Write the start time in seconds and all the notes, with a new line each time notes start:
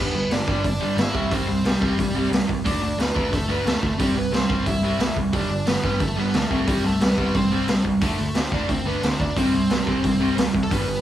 Already playing: G2 D3
0.00 G3 B3 B4
0.13 G1 G2 D3
0.31 G1 G2 D3 D4 D5, snare, open hi-hat
0.47 G1 G2 D3 G3, kick
0.64 G1 G2 D3 D4 D5, kick, open hi-hat
0.80 G1 G2 D3 G3
0.97 G1 G2 D3 E4, snare, open hi-hat
1.01 E5
1.13 C2 C3 G3 C4, kick
1.30 C2 C3 G3 C4 C5, kick, open hi-hat
1.47 C2 C3 G3
1.64 C2 C3 G3 G4, snare, open hi-hat
1.81 C2 C3 G3 C4, kick
1.97 C2 C3 G3, kick, open hi-hat
2.15 C2 C3 G3 C4
2.31 C2 C3 G3, snare, open hi-hat
2.48 C2 C3 G3, kick
2.65 D2 D3 A3 D4 D5, kick, open hi-hat
2.82 D2 D3 A3
2.98 D2 D3 A3 B3 B4, snare, open hi-hat
3.15 D2 D3 A3 D4, kick
3.31 D2 D3 A3 A4, kick, open hi-hat
3.48 D2 D3 A3 B3 D4 B4
3.65 D2 D3 A3 A4, snare, open hi-hat
3.82 D2 D3 A3, kick
3.98 C2 C3 G3 C4 G4, kick, open hi-hat
4.15 C2 C3 G3 B3 B4
4.32 C2 C3 G3 C4 C5, snare, open hi-hat
4.49 C2 C3 G3 C4, kick
4.66 C2 C3 G3 E4 E5, kick, open hi-hat
4.82 C2 C3 G3 C4
4.99 C2 C3 G3, snare, open hi-hat
5.16 C2 C3 G3, kick
5.33 G1 G2 D3 G3 D4 D5, kick, open hi-hat
5.49 G1 G2 D3
5.66 G1 G2 D3 B3 B4, snare, open hi-hat
5.83 G1 G2 D3 G3, kick
6.00 G1 G2 D3 A3 A4, kick, open hi-hat
6.16 G1 G2 D3 G3 B3 B4
6.33 D2 G2 D3 A3 A4, snare, open hi-hat
6.50 C2 C3 G3 C4, kick
6.67 C2 C3 G3 C4 G4, kick, open hi-hat
6.84 C2 C3 G3 A3 A4
7.00 C2 C3 G3 B3 B4, snare, open hi-hat
7.17 C2 C3 G3 C4, kick
7.35 C2 C3 G3 C4 C5, kick, open hi-hat
7.52 C2 C3 G3 C4
7.68 C2 C3 G3, snare, open hi-hat
7.85 C2 C3 G3, kick
8.01 D2 D3 A3 D4 A4, kick, open hi-hat
8.18 D2 D3 A3
8.35 D2 D3 A3 C4 C5, snare, open hi-hat
8.51 D2 D3 A3 D4 D5, kick
8.68 D2 D3 A3 C4 C5, kick, open hi-hat
8.85 D2 D3 A3 B3 D4 B4
9.02 D2 D3 A3 C4 C5, snare, open hi-hat
9.20 D2 D3 A3 D4 D5, kick
9.36 C2 C3 G3 C4 C5, kick, open hi-hat
9.53 C2 C3 G3
9.70 C2 C3 G3, snare, open hi-hat
9.86 C2 C3 G3 C4, kick
10.03 C2 C3 G3, kick, open hi-hat
10.20 C2 C3 G3 C4
10.37 C2 C3 G3, snare, open hi-hat
10.54 C2 C3 G3, kick
10.63 A4
10.71 G1 G2 D3 G3 B3 B4, kick, open hi-hat
10.88 G1 G2 D3